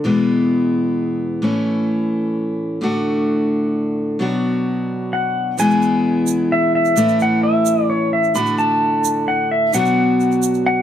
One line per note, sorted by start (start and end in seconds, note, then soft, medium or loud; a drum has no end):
0.04 1.43 E2 medium
0.04 1.41 B2 medium
0.04 1.41 E3 medium
0.04 1.42 G#3 medium
0.04 1.43 B3 medium
0.04 1.43 E4 medium
1.42 2.80 A2 medium
1.42 2.81 E3 medium
1.42 2.81 A3 medium
1.42 2.82 C#4 medium
1.42 2.83 E4 medium
2.81 4.19 A2 medium
2.81 4.19 D3 medium
2.81 4.20 A3 medium
2.81 4.20 D4 medium
2.81 4.21 F#4 medium
4.19 5.57 B2 medium
4.19 5.58 F#3 medium
4.19 5.59 B3 medium
4.19 5.59 D4 medium
4.19 5.60 F#4 medium
5.13 5.59 F#5 medium
5.58 6.97 E2 medium
5.58 6.95 B2 medium
5.58 6.96 E3 medium
5.58 6.97 G#3 medium
5.58 6.98 B3 medium
5.58 6.98 E4 medium
5.58 6.54 G#5 medium
5.58 shaker medium
5.70 shaker soft
5.82 shaker soft
6.27 shaker medium
6.52 6.74 E5 medium
6.75 7.22 E5 medium
6.85 shaker soft
6.96 8.33 A2 medium
6.96 8.35 E3 medium
6.96 8.35 A3 medium
6.96 8.36 C#4 medium
6.96 8.36 E4 medium
6.96 shaker medium
7.08 shaker soft
7.20 7.43 F#5 medium
7.20 shaker soft
7.43 7.91 E5 medium
7.66 shaker medium
7.90 8.11 C#5 medium
8.13 8.37 E5 medium
8.24 shaker soft
8.35 9.73 A2 medium
8.35 9.73 D3 medium
8.35 9.74 A3 medium
8.35 9.74 D4 medium
8.35 9.75 F#4 medium
8.35 8.58 B5 medium
8.35 shaker medium
8.46 shaker soft
8.58 9.30 A5 medium
8.58 shaker soft
9.04 shaker medium
9.28 9.52 F#5 medium
9.51 9.74 E5 medium
9.73 10.82 B2 medium
9.73 10.82 F#3 medium
9.73 10.82 B3 medium
9.73 10.82 D4 medium
9.73 10.82 F#4 medium
9.73 10.65 F#5 medium
9.73 shaker medium
9.85 shaker soft
10.20 shaker soft
10.32 shaker soft
10.43 shaker medium
10.54 shaker soft
10.66 10.82 F#5 medium